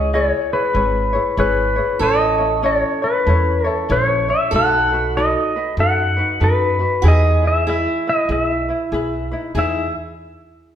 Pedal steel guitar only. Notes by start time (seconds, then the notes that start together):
Already playing: D#5
0.14 C#5
0.53 B4
1.40 B4
2.03 D#5
2.66 C#5
3.04 B4
3.67 A4
3.92 C#5
4.30 E5
4.56 F#5
5.17 D#5
5.80 F#5
6.44 B4
7.08 D#5
7.47 E5
7.70 E5
8.09 D#5
8.32 D#5
8.43 E5
9.59 E5